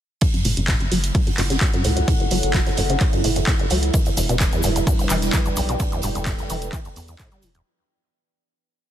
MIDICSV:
0, 0, Header, 1, 6, 480
1, 0, Start_track
1, 0, Tempo, 465116
1, 225, Time_signature, 4, 2, 24, 8
1, 9187, End_track
2, 0, Start_track
2, 0, Title_t, "Ambient pad"
2, 0, Program_c, 0, 92
2, 226, Note_on_c, 0, 64, 80
2, 693, Note_on_c, 0, 78, 87
2, 764, Note_on_c, 0, 69, 78
2, 1270, Note_on_c, 0, 73, 79
2, 4066, Note_off_c, 0, 73, 0
2, 4066, Note_off_c, 0, 78, 0
2, 4374, Note_on_c, 0, 71, 90
2, 4435, Note_on_c, 0, 79, 94
2, 4596, Note_on_c, 0, 74, 89
2, 5606, Note_off_c, 0, 69, 0
2, 7905, Note_off_c, 0, 79, 0
2, 7906, Note_off_c, 0, 64, 0
2, 7906, Note_off_c, 0, 71, 0
2, 7906, Note_off_c, 0, 74, 0
2, 9187, End_track
3, 0, Start_track
3, 0, Title_t, "Analog synth pad"
3, 0, Program_c, 1, 89
3, 4065, Note_on_c, 1, 62, 76
3, 4066, Note_on_c, 1, 55, 82
3, 4066, Note_on_c, 1, 64, 71
3, 4066, Note_on_c, 1, 71, 89
3, 5967, Note_off_c, 1, 71, 0
3, 5984, Note_on_c, 1, 69, 90
3, 7867, Note_off_c, 1, 55, 0
3, 7867, Note_off_c, 1, 62, 0
3, 7867, Note_off_c, 1, 64, 0
3, 7885, Note_off_c, 1, 69, 0
3, 9187, End_track
4, 0, Start_track
4, 0, Title_t, "Acid bass"
4, 0, Program_c, 2, 38
4, 224, Note_on_c, 2, 42, 78
4, 266, Note_off_c, 2, 42, 0
4, 349, Note_on_c, 2, 42, 70
4, 444, Note_off_c, 2, 42, 0
4, 465, Note_on_c, 2, 45, 75
4, 533, Note_off_c, 2, 45, 0
4, 589, Note_on_c, 2, 42, 77
4, 628, Note_off_c, 2, 42, 0
4, 704, Note_on_c, 2, 45, 80
4, 773, Note_off_c, 2, 45, 0
4, 829, Note_on_c, 2, 30, 77
4, 893, Note_off_c, 2, 30, 0
4, 945, Note_on_c, 2, 54, 75
4, 1014, Note_off_c, 2, 54, 0
4, 1185, Note_on_c, 2, 54, 81
4, 1254, Note_off_c, 2, 54, 0
4, 1310, Note_on_c, 2, 42, 74
4, 1348, Note_off_c, 2, 42, 0
4, 1425, Note_on_c, 2, 42, 77
4, 1466, Note_off_c, 2, 42, 0
4, 1550, Note_on_c, 2, 49, 75
4, 1613, Note_off_c, 2, 49, 0
4, 1665, Note_on_c, 2, 42, 85
4, 1706, Note_off_c, 2, 42, 0
4, 1789, Note_on_c, 2, 42, 76
4, 1885, Note_off_c, 2, 42, 0
4, 1904, Note_on_c, 2, 45, 78
4, 1973, Note_off_c, 2, 45, 0
4, 2029, Note_on_c, 2, 42, 75
4, 2067, Note_off_c, 2, 42, 0
4, 2144, Note_on_c, 2, 45, 77
4, 2213, Note_off_c, 2, 45, 0
4, 2269, Note_on_c, 2, 30, 71
4, 2333, Note_off_c, 2, 30, 0
4, 2385, Note_on_c, 2, 54, 75
4, 2454, Note_off_c, 2, 54, 0
4, 2624, Note_on_c, 2, 54, 80
4, 2693, Note_off_c, 2, 54, 0
4, 2749, Note_on_c, 2, 42, 76
4, 2788, Note_off_c, 2, 42, 0
4, 2865, Note_on_c, 2, 42, 80
4, 2906, Note_off_c, 2, 42, 0
4, 2990, Note_on_c, 2, 49, 78
4, 3054, Note_off_c, 2, 49, 0
4, 3105, Note_on_c, 2, 42, 78
4, 3146, Note_off_c, 2, 42, 0
4, 3230, Note_on_c, 2, 42, 75
4, 3325, Note_off_c, 2, 42, 0
4, 3345, Note_on_c, 2, 45, 74
4, 3414, Note_off_c, 2, 45, 0
4, 3470, Note_on_c, 2, 42, 76
4, 3508, Note_off_c, 2, 42, 0
4, 3586, Note_on_c, 2, 45, 82
4, 3654, Note_off_c, 2, 45, 0
4, 3710, Note_on_c, 2, 30, 73
4, 3773, Note_off_c, 2, 30, 0
4, 3826, Note_on_c, 2, 54, 79
4, 3894, Note_off_c, 2, 54, 0
4, 4065, Note_on_c, 2, 52, 80
4, 4133, Note_off_c, 2, 52, 0
4, 4190, Note_on_c, 2, 40, 75
4, 4228, Note_off_c, 2, 40, 0
4, 4306, Note_on_c, 2, 40, 74
4, 4347, Note_off_c, 2, 40, 0
4, 4430, Note_on_c, 2, 47, 74
4, 4494, Note_off_c, 2, 47, 0
4, 4546, Note_on_c, 2, 40, 80
4, 4587, Note_off_c, 2, 40, 0
4, 4671, Note_on_c, 2, 40, 78
4, 4765, Note_off_c, 2, 40, 0
4, 4787, Note_on_c, 2, 43, 76
4, 4855, Note_off_c, 2, 43, 0
4, 4911, Note_on_c, 2, 40, 80
4, 4949, Note_off_c, 2, 40, 0
4, 5027, Note_on_c, 2, 43, 78
4, 5095, Note_off_c, 2, 43, 0
4, 5152, Note_on_c, 2, 28, 75
4, 5214, Note_off_c, 2, 28, 0
4, 5267, Note_on_c, 2, 52, 78
4, 5335, Note_off_c, 2, 52, 0
4, 5506, Note_on_c, 2, 52, 84
4, 5574, Note_off_c, 2, 52, 0
4, 5631, Note_on_c, 2, 40, 77
4, 5669, Note_off_c, 2, 40, 0
4, 5747, Note_on_c, 2, 40, 77
4, 5787, Note_off_c, 2, 40, 0
4, 5872, Note_on_c, 2, 47, 75
4, 5935, Note_off_c, 2, 47, 0
4, 5988, Note_on_c, 2, 40, 82
4, 6028, Note_off_c, 2, 40, 0
4, 6112, Note_on_c, 2, 40, 73
4, 6206, Note_off_c, 2, 40, 0
4, 6227, Note_on_c, 2, 43, 75
4, 6295, Note_off_c, 2, 43, 0
4, 6352, Note_on_c, 2, 40, 80
4, 6389, Note_off_c, 2, 40, 0
4, 6467, Note_on_c, 2, 43, 85
4, 6534, Note_off_c, 2, 43, 0
4, 6591, Note_on_c, 2, 28, 80
4, 6654, Note_off_c, 2, 28, 0
4, 6708, Note_on_c, 2, 52, 77
4, 6775, Note_off_c, 2, 52, 0
4, 6947, Note_on_c, 2, 52, 83
4, 7015, Note_off_c, 2, 52, 0
4, 7072, Note_on_c, 2, 40, 77
4, 7109, Note_off_c, 2, 40, 0
4, 7188, Note_on_c, 2, 40, 79
4, 7228, Note_off_c, 2, 40, 0
4, 7313, Note_on_c, 2, 40, 77
4, 7375, Note_off_c, 2, 40, 0
4, 7428, Note_on_c, 2, 45, 82
4, 7530, Note_off_c, 2, 45, 0
4, 7552, Note_on_c, 2, 55, 77
4, 7667, Note_on_c, 2, 52, 80
4, 7683, Note_off_c, 2, 55, 0
4, 7735, Note_off_c, 2, 52, 0
4, 7791, Note_on_c, 2, 40, 98
4, 7854, Note_off_c, 2, 40, 0
4, 9187, End_track
5, 0, Start_track
5, 0, Title_t, "Analog synth bass"
5, 0, Program_c, 3, 38
5, 464, Note_on_c, 3, 30, 101
5, 569, Note_off_c, 3, 30, 0
5, 589, Note_on_c, 3, 30, 89
5, 789, Note_off_c, 3, 30, 0
5, 945, Note_on_c, 3, 30, 96
5, 1148, Note_off_c, 3, 30, 0
5, 1425, Note_on_c, 3, 30, 83
5, 1628, Note_off_c, 3, 30, 0
5, 1904, Note_on_c, 3, 37, 85
5, 2107, Note_off_c, 3, 37, 0
5, 2385, Note_on_c, 3, 30, 96
5, 2489, Note_off_c, 3, 30, 0
5, 2509, Note_on_c, 3, 30, 93
5, 2709, Note_off_c, 3, 30, 0
5, 2864, Note_on_c, 3, 30, 95
5, 3067, Note_off_c, 3, 30, 0
5, 3345, Note_on_c, 3, 30, 83
5, 3548, Note_off_c, 3, 30, 0
5, 3825, Note_on_c, 3, 37, 88
5, 4028, Note_off_c, 3, 37, 0
5, 4305, Note_on_c, 3, 28, 96
5, 4409, Note_off_c, 3, 28, 0
5, 4430, Note_on_c, 3, 28, 90
5, 4629, Note_off_c, 3, 28, 0
5, 4785, Note_on_c, 3, 28, 96
5, 4988, Note_off_c, 3, 28, 0
5, 5265, Note_on_c, 3, 28, 84
5, 5468, Note_off_c, 3, 28, 0
5, 5745, Note_on_c, 3, 35, 93
5, 5948, Note_off_c, 3, 35, 0
5, 6225, Note_on_c, 3, 28, 102
5, 6330, Note_off_c, 3, 28, 0
5, 6350, Note_on_c, 3, 28, 92
5, 6549, Note_off_c, 3, 28, 0
5, 6705, Note_on_c, 3, 28, 100
5, 6908, Note_off_c, 3, 28, 0
5, 7186, Note_on_c, 3, 40, 95
5, 7388, Note_off_c, 3, 40, 0
5, 7665, Note_on_c, 3, 28, 104
5, 7868, Note_off_c, 3, 28, 0
5, 9187, End_track
6, 0, Start_track
6, 0, Title_t, "Drums"
6, 219, Note_on_c, 9, 42, 87
6, 224, Note_on_c, 9, 36, 109
6, 225, Note_off_c, 9, 42, 0
6, 225, Note_on_c, 9, 42, 52
6, 328, Note_off_c, 9, 36, 0
6, 328, Note_off_c, 9, 42, 0
6, 347, Note_on_c, 9, 42, 38
6, 350, Note_off_c, 9, 42, 0
6, 350, Note_on_c, 9, 42, 26
6, 453, Note_off_c, 9, 42, 0
6, 461, Note_on_c, 9, 42, 60
6, 465, Note_on_c, 9, 46, 106
6, 564, Note_off_c, 9, 42, 0
6, 568, Note_off_c, 9, 46, 0
6, 589, Note_on_c, 9, 42, 52
6, 693, Note_off_c, 9, 42, 0
6, 699, Note_on_c, 9, 39, 112
6, 702, Note_on_c, 9, 42, 88
6, 705, Note_off_c, 9, 42, 0
6, 705, Note_on_c, 9, 36, 95
6, 705, Note_on_c, 9, 42, 52
6, 707, Note_on_c, 9, 38, 118
6, 802, Note_off_c, 9, 39, 0
6, 808, Note_off_c, 9, 36, 0
6, 808, Note_off_c, 9, 42, 0
6, 810, Note_off_c, 9, 38, 0
6, 829, Note_on_c, 9, 42, 26
6, 933, Note_off_c, 9, 42, 0
6, 945, Note_on_c, 9, 46, 85
6, 948, Note_on_c, 9, 42, 60
6, 1048, Note_off_c, 9, 46, 0
6, 1051, Note_off_c, 9, 42, 0
6, 1070, Note_on_c, 9, 42, 53
6, 1072, Note_off_c, 9, 42, 0
6, 1072, Note_on_c, 9, 42, 46
6, 1175, Note_off_c, 9, 42, 0
6, 1185, Note_on_c, 9, 36, 109
6, 1185, Note_on_c, 9, 42, 52
6, 1190, Note_on_c, 9, 46, 71
6, 1288, Note_off_c, 9, 36, 0
6, 1288, Note_off_c, 9, 42, 0
6, 1294, Note_off_c, 9, 46, 0
6, 1310, Note_on_c, 9, 42, 26
6, 1414, Note_off_c, 9, 42, 0
6, 1420, Note_on_c, 9, 39, 61
6, 1426, Note_on_c, 9, 46, 103
6, 1430, Note_on_c, 9, 42, 69
6, 1523, Note_off_c, 9, 39, 0
6, 1529, Note_off_c, 9, 46, 0
6, 1533, Note_off_c, 9, 42, 0
6, 1550, Note_on_c, 9, 42, 50
6, 1554, Note_on_c, 9, 38, 39
6, 1653, Note_off_c, 9, 42, 0
6, 1657, Note_off_c, 9, 38, 0
6, 1660, Note_on_c, 9, 39, 115
6, 1662, Note_on_c, 9, 38, 97
6, 1662, Note_on_c, 9, 42, 72
6, 1665, Note_off_c, 9, 42, 0
6, 1665, Note_on_c, 9, 36, 103
6, 1665, Note_on_c, 9, 42, 52
6, 1763, Note_off_c, 9, 39, 0
6, 1766, Note_off_c, 9, 38, 0
6, 1768, Note_off_c, 9, 36, 0
6, 1769, Note_off_c, 9, 42, 0
6, 1790, Note_on_c, 9, 42, 27
6, 1893, Note_off_c, 9, 42, 0
6, 1901, Note_on_c, 9, 42, 67
6, 1905, Note_on_c, 9, 46, 89
6, 2004, Note_off_c, 9, 42, 0
6, 2008, Note_off_c, 9, 46, 0
6, 2030, Note_on_c, 9, 42, 53
6, 2133, Note_off_c, 9, 42, 0
6, 2145, Note_on_c, 9, 36, 124
6, 2145, Note_on_c, 9, 42, 49
6, 2150, Note_off_c, 9, 42, 0
6, 2150, Note_on_c, 9, 42, 92
6, 2248, Note_off_c, 9, 36, 0
6, 2253, Note_off_c, 9, 42, 0
6, 2270, Note_on_c, 9, 42, 25
6, 2373, Note_off_c, 9, 42, 0
6, 2381, Note_on_c, 9, 42, 63
6, 2385, Note_on_c, 9, 46, 107
6, 2485, Note_off_c, 9, 42, 0
6, 2489, Note_off_c, 9, 46, 0
6, 2510, Note_on_c, 9, 42, 53
6, 2613, Note_off_c, 9, 42, 0
6, 2619, Note_on_c, 9, 39, 117
6, 2623, Note_on_c, 9, 38, 117
6, 2625, Note_on_c, 9, 36, 105
6, 2625, Note_on_c, 9, 42, 49
6, 2629, Note_off_c, 9, 42, 0
6, 2629, Note_on_c, 9, 42, 94
6, 2723, Note_off_c, 9, 39, 0
6, 2727, Note_off_c, 9, 38, 0
6, 2729, Note_off_c, 9, 36, 0
6, 2732, Note_off_c, 9, 42, 0
6, 2748, Note_on_c, 9, 38, 43
6, 2750, Note_on_c, 9, 42, 26
6, 2852, Note_off_c, 9, 38, 0
6, 2853, Note_off_c, 9, 42, 0
6, 2860, Note_on_c, 9, 42, 75
6, 2865, Note_on_c, 9, 46, 89
6, 2964, Note_off_c, 9, 42, 0
6, 2968, Note_off_c, 9, 46, 0
6, 2989, Note_on_c, 9, 42, 51
6, 3093, Note_off_c, 9, 42, 0
6, 3100, Note_on_c, 9, 39, 60
6, 3100, Note_on_c, 9, 42, 82
6, 3105, Note_off_c, 9, 42, 0
6, 3105, Note_on_c, 9, 36, 119
6, 3105, Note_on_c, 9, 42, 52
6, 3203, Note_off_c, 9, 39, 0
6, 3208, Note_off_c, 9, 42, 0
6, 3209, Note_off_c, 9, 36, 0
6, 3227, Note_on_c, 9, 42, 39
6, 3230, Note_off_c, 9, 42, 0
6, 3230, Note_on_c, 9, 42, 26
6, 3334, Note_off_c, 9, 42, 0
6, 3345, Note_on_c, 9, 46, 103
6, 3347, Note_on_c, 9, 42, 59
6, 3448, Note_off_c, 9, 46, 0
6, 3451, Note_off_c, 9, 42, 0
6, 3464, Note_on_c, 9, 42, 45
6, 3470, Note_off_c, 9, 42, 0
6, 3470, Note_on_c, 9, 42, 48
6, 3573, Note_off_c, 9, 42, 0
6, 3579, Note_on_c, 9, 39, 121
6, 3583, Note_on_c, 9, 38, 111
6, 3585, Note_on_c, 9, 36, 106
6, 3585, Note_on_c, 9, 42, 49
6, 3589, Note_off_c, 9, 42, 0
6, 3589, Note_on_c, 9, 42, 81
6, 3682, Note_off_c, 9, 39, 0
6, 3686, Note_off_c, 9, 38, 0
6, 3688, Note_off_c, 9, 36, 0
6, 3692, Note_off_c, 9, 42, 0
6, 3709, Note_on_c, 9, 42, 26
6, 3813, Note_off_c, 9, 42, 0
6, 3819, Note_on_c, 9, 42, 67
6, 3825, Note_on_c, 9, 46, 96
6, 3923, Note_off_c, 9, 42, 0
6, 3929, Note_off_c, 9, 46, 0
6, 3950, Note_on_c, 9, 42, 53
6, 4053, Note_off_c, 9, 42, 0
6, 4061, Note_on_c, 9, 42, 88
6, 4065, Note_off_c, 9, 42, 0
6, 4065, Note_on_c, 9, 36, 125
6, 4065, Note_on_c, 9, 42, 48
6, 4071, Note_on_c, 9, 82, 56
6, 4168, Note_off_c, 9, 36, 0
6, 4168, Note_off_c, 9, 42, 0
6, 4174, Note_off_c, 9, 82, 0
6, 4181, Note_on_c, 9, 42, 46
6, 4189, Note_on_c, 9, 82, 23
6, 4190, Note_off_c, 9, 42, 0
6, 4190, Note_on_c, 9, 42, 25
6, 4292, Note_off_c, 9, 82, 0
6, 4293, Note_off_c, 9, 42, 0
6, 4302, Note_on_c, 9, 42, 71
6, 4306, Note_on_c, 9, 46, 111
6, 4308, Note_on_c, 9, 82, 97
6, 4406, Note_off_c, 9, 42, 0
6, 4409, Note_off_c, 9, 46, 0
6, 4412, Note_off_c, 9, 82, 0
6, 4430, Note_on_c, 9, 42, 49
6, 4436, Note_on_c, 9, 82, 39
6, 4534, Note_off_c, 9, 42, 0
6, 4539, Note_off_c, 9, 82, 0
6, 4540, Note_on_c, 9, 39, 114
6, 4540, Note_on_c, 9, 42, 94
6, 4544, Note_on_c, 9, 38, 121
6, 4545, Note_on_c, 9, 36, 101
6, 4546, Note_off_c, 9, 42, 0
6, 4546, Note_on_c, 9, 42, 50
6, 4547, Note_on_c, 9, 82, 50
6, 4644, Note_off_c, 9, 39, 0
6, 4647, Note_off_c, 9, 38, 0
6, 4648, Note_off_c, 9, 36, 0
6, 4649, Note_off_c, 9, 42, 0
6, 4650, Note_off_c, 9, 82, 0
6, 4668, Note_on_c, 9, 82, 27
6, 4671, Note_on_c, 9, 42, 25
6, 4771, Note_off_c, 9, 82, 0
6, 4774, Note_off_c, 9, 42, 0
6, 4774, Note_on_c, 9, 82, 83
6, 4786, Note_on_c, 9, 46, 92
6, 4790, Note_on_c, 9, 42, 69
6, 4878, Note_off_c, 9, 82, 0
6, 4889, Note_off_c, 9, 46, 0
6, 4894, Note_off_c, 9, 42, 0
6, 4911, Note_on_c, 9, 42, 50
6, 4914, Note_off_c, 9, 42, 0
6, 4914, Note_on_c, 9, 42, 38
6, 4916, Note_on_c, 9, 82, 43
6, 5017, Note_off_c, 9, 42, 0
6, 5019, Note_off_c, 9, 82, 0
6, 5025, Note_on_c, 9, 36, 118
6, 5025, Note_on_c, 9, 46, 74
6, 5026, Note_on_c, 9, 42, 51
6, 5033, Note_on_c, 9, 82, 53
6, 5129, Note_off_c, 9, 36, 0
6, 5129, Note_off_c, 9, 42, 0
6, 5129, Note_off_c, 9, 46, 0
6, 5136, Note_off_c, 9, 82, 0
6, 5151, Note_on_c, 9, 42, 25
6, 5154, Note_on_c, 9, 82, 25
6, 5254, Note_off_c, 9, 42, 0
6, 5257, Note_off_c, 9, 82, 0
6, 5257, Note_on_c, 9, 42, 65
6, 5260, Note_on_c, 9, 39, 63
6, 5263, Note_on_c, 9, 82, 91
6, 5266, Note_on_c, 9, 46, 106
6, 5361, Note_off_c, 9, 42, 0
6, 5363, Note_off_c, 9, 39, 0
6, 5366, Note_off_c, 9, 82, 0
6, 5369, Note_off_c, 9, 46, 0
6, 5388, Note_on_c, 9, 38, 41
6, 5391, Note_on_c, 9, 42, 49
6, 5391, Note_on_c, 9, 82, 44
6, 5491, Note_off_c, 9, 38, 0
6, 5494, Note_off_c, 9, 42, 0
6, 5494, Note_off_c, 9, 82, 0
6, 5497, Note_on_c, 9, 38, 122
6, 5501, Note_on_c, 9, 39, 115
6, 5503, Note_on_c, 9, 82, 63
6, 5505, Note_on_c, 9, 36, 111
6, 5506, Note_on_c, 9, 42, 50
6, 5510, Note_off_c, 9, 42, 0
6, 5510, Note_on_c, 9, 42, 90
6, 5600, Note_off_c, 9, 38, 0
6, 5604, Note_off_c, 9, 39, 0
6, 5606, Note_off_c, 9, 82, 0
6, 5608, Note_off_c, 9, 36, 0
6, 5614, Note_off_c, 9, 42, 0
6, 5627, Note_on_c, 9, 82, 26
6, 5631, Note_on_c, 9, 42, 24
6, 5730, Note_off_c, 9, 82, 0
6, 5734, Note_off_c, 9, 42, 0
6, 5742, Note_on_c, 9, 82, 89
6, 5746, Note_on_c, 9, 46, 94
6, 5749, Note_on_c, 9, 42, 72
6, 5845, Note_off_c, 9, 82, 0
6, 5849, Note_off_c, 9, 46, 0
6, 5853, Note_off_c, 9, 42, 0
6, 5870, Note_on_c, 9, 42, 52
6, 5879, Note_on_c, 9, 82, 36
6, 5974, Note_off_c, 9, 42, 0
6, 5982, Note_off_c, 9, 82, 0
6, 5982, Note_on_c, 9, 82, 54
6, 5983, Note_on_c, 9, 42, 97
6, 5985, Note_off_c, 9, 42, 0
6, 5985, Note_on_c, 9, 36, 117
6, 5985, Note_on_c, 9, 42, 49
6, 6086, Note_off_c, 9, 82, 0
6, 6088, Note_off_c, 9, 36, 0
6, 6089, Note_off_c, 9, 42, 0
6, 6110, Note_on_c, 9, 42, 25
6, 6112, Note_on_c, 9, 82, 26
6, 6211, Note_off_c, 9, 42, 0
6, 6211, Note_on_c, 9, 42, 74
6, 6215, Note_off_c, 9, 82, 0
6, 6223, Note_on_c, 9, 82, 93
6, 6225, Note_on_c, 9, 46, 114
6, 6314, Note_off_c, 9, 42, 0
6, 6326, Note_off_c, 9, 82, 0
6, 6328, Note_off_c, 9, 46, 0
6, 6349, Note_on_c, 9, 42, 48
6, 6353, Note_on_c, 9, 82, 38
6, 6453, Note_off_c, 9, 42, 0
6, 6456, Note_off_c, 9, 82, 0
6, 6459, Note_on_c, 9, 39, 118
6, 6462, Note_on_c, 9, 82, 49
6, 6465, Note_on_c, 9, 36, 106
6, 6465, Note_on_c, 9, 42, 47
6, 6467, Note_off_c, 9, 42, 0
6, 6467, Note_on_c, 9, 42, 87
6, 6470, Note_on_c, 9, 38, 124
6, 6562, Note_off_c, 9, 39, 0
6, 6565, Note_off_c, 9, 82, 0
6, 6568, Note_off_c, 9, 36, 0
6, 6570, Note_off_c, 9, 42, 0
6, 6573, Note_off_c, 9, 38, 0
6, 6588, Note_on_c, 9, 38, 42
6, 6590, Note_on_c, 9, 42, 25
6, 6590, Note_on_c, 9, 82, 27
6, 6691, Note_off_c, 9, 38, 0
6, 6693, Note_off_c, 9, 42, 0
6, 6693, Note_off_c, 9, 82, 0
6, 6702, Note_on_c, 9, 42, 70
6, 6706, Note_on_c, 9, 46, 91
6, 6707, Note_on_c, 9, 82, 92
6, 6805, Note_off_c, 9, 42, 0
6, 6809, Note_off_c, 9, 46, 0
6, 6810, Note_off_c, 9, 82, 0
6, 6830, Note_on_c, 9, 82, 42
6, 6831, Note_on_c, 9, 42, 49
6, 6933, Note_off_c, 9, 82, 0
6, 6934, Note_off_c, 9, 42, 0
6, 6940, Note_on_c, 9, 39, 61
6, 6942, Note_on_c, 9, 42, 77
6, 6945, Note_on_c, 9, 36, 119
6, 6946, Note_off_c, 9, 42, 0
6, 6946, Note_on_c, 9, 42, 52
6, 6951, Note_on_c, 9, 82, 53
6, 7043, Note_off_c, 9, 39, 0
6, 7048, Note_off_c, 9, 36, 0
6, 7049, Note_off_c, 9, 42, 0
6, 7054, Note_off_c, 9, 82, 0
6, 7067, Note_on_c, 9, 42, 44
6, 7067, Note_on_c, 9, 82, 25
6, 7070, Note_off_c, 9, 42, 0
6, 7070, Note_on_c, 9, 42, 25
6, 7170, Note_off_c, 9, 82, 0
6, 7173, Note_off_c, 9, 42, 0
6, 7181, Note_on_c, 9, 42, 64
6, 7186, Note_on_c, 9, 46, 109
6, 7193, Note_on_c, 9, 82, 83
6, 7284, Note_off_c, 9, 42, 0
6, 7289, Note_off_c, 9, 46, 0
6, 7296, Note_off_c, 9, 82, 0
6, 7303, Note_on_c, 9, 82, 46
6, 7309, Note_on_c, 9, 42, 45
6, 7310, Note_off_c, 9, 42, 0
6, 7310, Note_on_c, 9, 42, 46
6, 7406, Note_off_c, 9, 82, 0
6, 7413, Note_off_c, 9, 42, 0
6, 7420, Note_on_c, 9, 39, 109
6, 7422, Note_on_c, 9, 42, 92
6, 7423, Note_on_c, 9, 82, 61
6, 7425, Note_on_c, 9, 36, 108
6, 7426, Note_off_c, 9, 42, 0
6, 7426, Note_on_c, 9, 42, 48
6, 7428, Note_on_c, 9, 38, 123
6, 7523, Note_off_c, 9, 39, 0
6, 7526, Note_off_c, 9, 82, 0
6, 7528, Note_off_c, 9, 36, 0
6, 7529, Note_off_c, 9, 42, 0
6, 7531, Note_off_c, 9, 38, 0
6, 7547, Note_on_c, 9, 82, 26
6, 7550, Note_on_c, 9, 42, 25
6, 7650, Note_off_c, 9, 82, 0
6, 7653, Note_off_c, 9, 42, 0
6, 7660, Note_on_c, 9, 42, 66
6, 7662, Note_on_c, 9, 82, 93
6, 7665, Note_on_c, 9, 46, 95
6, 7763, Note_off_c, 9, 42, 0
6, 7765, Note_off_c, 9, 82, 0
6, 7768, Note_off_c, 9, 46, 0
6, 7787, Note_on_c, 9, 82, 41
6, 7789, Note_on_c, 9, 42, 50
6, 7890, Note_off_c, 9, 82, 0
6, 7893, Note_off_c, 9, 42, 0
6, 9187, End_track
0, 0, End_of_file